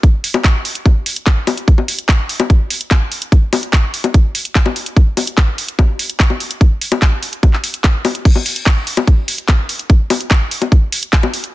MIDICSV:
0, 0, Header, 1, 2, 480
1, 0, Start_track
1, 0, Tempo, 410959
1, 40, Time_signature, 4, 2, 24, 8
1, 13487, End_track
2, 0, Start_track
2, 0, Title_t, "Drums"
2, 39, Note_on_c, 9, 36, 123
2, 39, Note_on_c, 9, 42, 62
2, 156, Note_off_c, 9, 36, 0
2, 156, Note_off_c, 9, 42, 0
2, 280, Note_on_c, 9, 46, 111
2, 396, Note_off_c, 9, 46, 0
2, 399, Note_on_c, 9, 42, 63
2, 399, Note_on_c, 9, 60, 80
2, 516, Note_off_c, 9, 42, 0
2, 516, Note_off_c, 9, 60, 0
2, 519, Note_on_c, 9, 36, 123
2, 520, Note_on_c, 9, 39, 121
2, 520, Note_on_c, 9, 42, 66
2, 636, Note_off_c, 9, 36, 0
2, 636, Note_off_c, 9, 39, 0
2, 636, Note_off_c, 9, 42, 0
2, 759, Note_on_c, 9, 46, 110
2, 876, Note_off_c, 9, 46, 0
2, 880, Note_on_c, 9, 42, 64
2, 996, Note_off_c, 9, 42, 0
2, 999, Note_on_c, 9, 36, 120
2, 1000, Note_on_c, 9, 42, 64
2, 1000, Note_on_c, 9, 60, 38
2, 1116, Note_off_c, 9, 36, 0
2, 1116, Note_off_c, 9, 42, 0
2, 1116, Note_off_c, 9, 60, 0
2, 1239, Note_on_c, 9, 46, 113
2, 1356, Note_off_c, 9, 46, 0
2, 1359, Note_on_c, 9, 42, 66
2, 1476, Note_off_c, 9, 42, 0
2, 1479, Note_on_c, 9, 36, 125
2, 1479, Note_on_c, 9, 39, 118
2, 1479, Note_on_c, 9, 42, 64
2, 1596, Note_off_c, 9, 36, 0
2, 1596, Note_off_c, 9, 39, 0
2, 1596, Note_off_c, 9, 42, 0
2, 1719, Note_on_c, 9, 46, 112
2, 1719, Note_on_c, 9, 60, 75
2, 1836, Note_off_c, 9, 46, 0
2, 1836, Note_off_c, 9, 60, 0
2, 1839, Note_on_c, 9, 42, 63
2, 1956, Note_off_c, 9, 42, 0
2, 1959, Note_on_c, 9, 36, 127
2, 1959, Note_on_c, 9, 42, 64
2, 2076, Note_off_c, 9, 36, 0
2, 2076, Note_off_c, 9, 42, 0
2, 2079, Note_on_c, 9, 60, 38
2, 2196, Note_off_c, 9, 60, 0
2, 2199, Note_on_c, 9, 46, 109
2, 2316, Note_off_c, 9, 46, 0
2, 2319, Note_on_c, 9, 42, 66
2, 2436, Note_off_c, 9, 42, 0
2, 2439, Note_on_c, 9, 36, 117
2, 2439, Note_on_c, 9, 39, 119
2, 2439, Note_on_c, 9, 42, 66
2, 2556, Note_off_c, 9, 36, 0
2, 2556, Note_off_c, 9, 39, 0
2, 2556, Note_off_c, 9, 42, 0
2, 2679, Note_on_c, 9, 46, 109
2, 2796, Note_off_c, 9, 46, 0
2, 2799, Note_on_c, 9, 42, 65
2, 2799, Note_on_c, 9, 60, 82
2, 2916, Note_off_c, 9, 42, 0
2, 2916, Note_off_c, 9, 60, 0
2, 2919, Note_on_c, 9, 36, 116
2, 2919, Note_on_c, 9, 42, 63
2, 3036, Note_off_c, 9, 36, 0
2, 3036, Note_off_c, 9, 42, 0
2, 3159, Note_on_c, 9, 46, 114
2, 3276, Note_off_c, 9, 46, 0
2, 3279, Note_on_c, 9, 42, 65
2, 3396, Note_off_c, 9, 42, 0
2, 3399, Note_on_c, 9, 36, 124
2, 3399, Note_on_c, 9, 39, 115
2, 3399, Note_on_c, 9, 42, 64
2, 3399, Note_on_c, 9, 60, 42
2, 3516, Note_off_c, 9, 36, 0
2, 3516, Note_off_c, 9, 39, 0
2, 3516, Note_off_c, 9, 42, 0
2, 3516, Note_off_c, 9, 60, 0
2, 3639, Note_on_c, 9, 46, 101
2, 3756, Note_off_c, 9, 46, 0
2, 3759, Note_on_c, 9, 42, 63
2, 3876, Note_off_c, 9, 42, 0
2, 3879, Note_on_c, 9, 36, 120
2, 3879, Note_on_c, 9, 42, 67
2, 3996, Note_off_c, 9, 36, 0
2, 3996, Note_off_c, 9, 42, 0
2, 4119, Note_on_c, 9, 46, 108
2, 4119, Note_on_c, 9, 60, 85
2, 4236, Note_off_c, 9, 46, 0
2, 4236, Note_off_c, 9, 60, 0
2, 4239, Note_on_c, 9, 42, 66
2, 4356, Note_off_c, 9, 42, 0
2, 4359, Note_on_c, 9, 36, 114
2, 4359, Note_on_c, 9, 39, 117
2, 4359, Note_on_c, 9, 42, 66
2, 4476, Note_off_c, 9, 36, 0
2, 4476, Note_off_c, 9, 39, 0
2, 4476, Note_off_c, 9, 42, 0
2, 4599, Note_on_c, 9, 46, 103
2, 4716, Note_off_c, 9, 46, 0
2, 4719, Note_on_c, 9, 42, 69
2, 4719, Note_on_c, 9, 60, 42
2, 4836, Note_off_c, 9, 42, 0
2, 4836, Note_off_c, 9, 60, 0
2, 4839, Note_on_c, 9, 36, 115
2, 4839, Note_on_c, 9, 42, 65
2, 4956, Note_off_c, 9, 36, 0
2, 4956, Note_off_c, 9, 42, 0
2, 5079, Note_on_c, 9, 46, 106
2, 5196, Note_off_c, 9, 46, 0
2, 5199, Note_on_c, 9, 42, 65
2, 5316, Note_off_c, 9, 42, 0
2, 5319, Note_on_c, 9, 36, 112
2, 5320, Note_on_c, 9, 39, 118
2, 5320, Note_on_c, 9, 42, 70
2, 5436, Note_off_c, 9, 36, 0
2, 5436, Note_off_c, 9, 39, 0
2, 5436, Note_off_c, 9, 42, 0
2, 5439, Note_on_c, 9, 60, 81
2, 5556, Note_off_c, 9, 60, 0
2, 5559, Note_on_c, 9, 46, 99
2, 5676, Note_off_c, 9, 46, 0
2, 5680, Note_on_c, 9, 42, 66
2, 5796, Note_off_c, 9, 42, 0
2, 5799, Note_on_c, 9, 36, 121
2, 5800, Note_on_c, 9, 42, 68
2, 5916, Note_off_c, 9, 36, 0
2, 5916, Note_off_c, 9, 42, 0
2, 6039, Note_on_c, 9, 46, 101
2, 6039, Note_on_c, 9, 60, 41
2, 6156, Note_off_c, 9, 46, 0
2, 6156, Note_off_c, 9, 60, 0
2, 6160, Note_on_c, 9, 42, 68
2, 6276, Note_off_c, 9, 42, 0
2, 6279, Note_on_c, 9, 36, 119
2, 6280, Note_on_c, 9, 39, 119
2, 6280, Note_on_c, 9, 42, 70
2, 6396, Note_off_c, 9, 36, 0
2, 6397, Note_off_c, 9, 39, 0
2, 6397, Note_off_c, 9, 42, 0
2, 6520, Note_on_c, 9, 46, 105
2, 6636, Note_off_c, 9, 46, 0
2, 6640, Note_on_c, 9, 42, 70
2, 6756, Note_off_c, 9, 42, 0
2, 6759, Note_on_c, 9, 36, 109
2, 6760, Note_on_c, 9, 42, 66
2, 6760, Note_on_c, 9, 60, 80
2, 6876, Note_off_c, 9, 36, 0
2, 6876, Note_off_c, 9, 42, 0
2, 6876, Note_off_c, 9, 60, 0
2, 7000, Note_on_c, 9, 46, 104
2, 7116, Note_off_c, 9, 46, 0
2, 7120, Note_on_c, 9, 42, 68
2, 7236, Note_off_c, 9, 42, 0
2, 7239, Note_on_c, 9, 36, 113
2, 7239, Note_on_c, 9, 39, 124
2, 7239, Note_on_c, 9, 42, 69
2, 7356, Note_off_c, 9, 36, 0
2, 7356, Note_off_c, 9, 39, 0
2, 7356, Note_off_c, 9, 42, 0
2, 7359, Note_on_c, 9, 60, 43
2, 7476, Note_off_c, 9, 60, 0
2, 7479, Note_on_c, 9, 46, 100
2, 7596, Note_off_c, 9, 46, 0
2, 7600, Note_on_c, 9, 42, 69
2, 7717, Note_off_c, 9, 42, 0
2, 7719, Note_on_c, 9, 36, 115
2, 7719, Note_on_c, 9, 42, 72
2, 7836, Note_off_c, 9, 36, 0
2, 7836, Note_off_c, 9, 42, 0
2, 7959, Note_on_c, 9, 46, 99
2, 8076, Note_off_c, 9, 46, 0
2, 8079, Note_on_c, 9, 42, 70
2, 8079, Note_on_c, 9, 60, 82
2, 8196, Note_off_c, 9, 42, 0
2, 8196, Note_off_c, 9, 60, 0
2, 8199, Note_on_c, 9, 36, 118
2, 8199, Note_on_c, 9, 39, 122
2, 8199, Note_on_c, 9, 42, 74
2, 8316, Note_off_c, 9, 36, 0
2, 8316, Note_off_c, 9, 39, 0
2, 8316, Note_off_c, 9, 42, 0
2, 8439, Note_on_c, 9, 46, 103
2, 8556, Note_off_c, 9, 46, 0
2, 8559, Note_on_c, 9, 42, 70
2, 8676, Note_off_c, 9, 42, 0
2, 8679, Note_on_c, 9, 36, 116
2, 8679, Note_on_c, 9, 42, 70
2, 8679, Note_on_c, 9, 60, 41
2, 8796, Note_off_c, 9, 36, 0
2, 8796, Note_off_c, 9, 42, 0
2, 8796, Note_off_c, 9, 60, 0
2, 8799, Note_on_c, 9, 39, 40
2, 8916, Note_off_c, 9, 39, 0
2, 8919, Note_on_c, 9, 46, 107
2, 9036, Note_off_c, 9, 46, 0
2, 9039, Note_on_c, 9, 42, 71
2, 9156, Note_off_c, 9, 42, 0
2, 9159, Note_on_c, 9, 36, 111
2, 9159, Note_on_c, 9, 39, 124
2, 9159, Note_on_c, 9, 42, 71
2, 9276, Note_off_c, 9, 36, 0
2, 9276, Note_off_c, 9, 39, 0
2, 9276, Note_off_c, 9, 42, 0
2, 9399, Note_on_c, 9, 46, 100
2, 9399, Note_on_c, 9, 60, 81
2, 9516, Note_off_c, 9, 46, 0
2, 9516, Note_off_c, 9, 60, 0
2, 9519, Note_on_c, 9, 42, 71
2, 9636, Note_off_c, 9, 42, 0
2, 9639, Note_on_c, 9, 36, 123
2, 9639, Note_on_c, 9, 42, 66
2, 9639, Note_on_c, 9, 49, 77
2, 9756, Note_off_c, 9, 36, 0
2, 9756, Note_off_c, 9, 42, 0
2, 9756, Note_off_c, 9, 49, 0
2, 9759, Note_on_c, 9, 60, 38
2, 9876, Note_off_c, 9, 60, 0
2, 9879, Note_on_c, 9, 46, 108
2, 9996, Note_off_c, 9, 46, 0
2, 9999, Note_on_c, 9, 42, 67
2, 10116, Note_off_c, 9, 42, 0
2, 10119, Note_on_c, 9, 36, 123
2, 10119, Note_on_c, 9, 39, 127
2, 10119, Note_on_c, 9, 42, 72
2, 10236, Note_off_c, 9, 36, 0
2, 10236, Note_off_c, 9, 39, 0
2, 10236, Note_off_c, 9, 42, 0
2, 10359, Note_on_c, 9, 46, 110
2, 10476, Note_off_c, 9, 46, 0
2, 10479, Note_on_c, 9, 42, 70
2, 10479, Note_on_c, 9, 60, 82
2, 10596, Note_off_c, 9, 42, 0
2, 10596, Note_off_c, 9, 60, 0
2, 10599, Note_on_c, 9, 36, 117
2, 10600, Note_on_c, 9, 42, 68
2, 10716, Note_off_c, 9, 36, 0
2, 10716, Note_off_c, 9, 42, 0
2, 10840, Note_on_c, 9, 46, 111
2, 10956, Note_off_c, 9, 46, 0
2, 10959, Note_on_c, 9, 42, 69
2, 11076, Note_off_c, 9, 42, 0
2, 11079, Note_on_c, 9, 36, 118
2, 11079, Note_on_c, 9, 39, 127
2, 11079, Note_on_c, 9, 42, 71
2, 11079, Note_on_c, 9, 60, 41
2, 11196, Note_off_c, 9, 36, 0
2, 11196, Note_off_c, 9, 39, 0
2, 11196, Note_off_c, 9, 42, 0
2, 11196, Note_off_c, 9, 60, 0
2, 11319, Note_on_c, 9, 46, 105
2, 11436, Note_off_c, 9, 46, 0
2, 11440, Note_on_c, 9, 42, 69
2, 11556, Note_off_c, 9, 42, 0
2, 11559, Note_on_c, 9, 36, 126
2, 11559, Note_on_c, 9, 42, 64
2, 11676, Note_off_c, 9, 36, 0
2, 11676, Note_off_c, 9, 42, 0
2, 11799, Note_on_c, 9, 46, 107
2, 11799, Note_on_c, 9, 60, 79
2, 11916, Note_off_c, 9, 46, 0
2, 11916, Note_off_c, 9, 60, 0
2, 11920, Note_on_c, 9, 42, 69
2, 12036, Note_off_c, 9, 42, 0
2, 12039, Note_on_c, 9, 36, 127
2, 12040, Note_on_c, 9, 39, 127
2, 12040, Note_on_c, 9, 42, 67
2, 12156, Note_off_c, 9, 36, 0
2, 12156, Note_off_c, 9, 39, 0
2, 12156, Note_off_c, 9, 42, 0
2, 12280, Note_on_c, 9, 46, 113
2, 12396, Note_off_c, 9, 46, 0
2, 12400, Note_on_c, 9, 42, 68
2, 12400, Note_on_c, 9, 60, 40
2, 12517, Note_off_c, 9, 42, 0
2, 12517, Note_off_c, 9, 60, 0
2, 12519, Note_on_c, 9, 36, 118
2, 12520, Note_on_c, 9, 42, 66
2, 12636, Note_off_c, 9, 36, 0
2, 12637, Note_off_c, 9, 42, 0
2, 12760, Note_on_c, 9, 46, 115
2, 12876, Note_off_c, 9, 46, 0
2, 12880, Note_on_c, 9, 42, 68
2, 12996, Note_off_c, 9, 42, 0
2, 12999, Note_on_c, 9, 36, 124
2, 13000, Note_on_c, 9, 39, 127
2, 13000, Note_on_c, 9, 42, 68
2, 13116, Note_off_c, 9, 36, 0
2, 13116, Note_off_c, 9, 39, 0
2, 13116, Note_off_c, 9, 42, 0
2, 13120, Note_on_c, 9, 60, 76
2, 13236, Note_off_c, 9, 60, 0
2, 13240, Note_on_c, 9, 46, 107
2, 13356, Note_off_c, 9, 46, 0
2, 13359, Note_on_c, 9, 42, 66
2, 13476, Note_off_c, 9, 42, 0
2, 13487, End_track
0, 0, End_of_file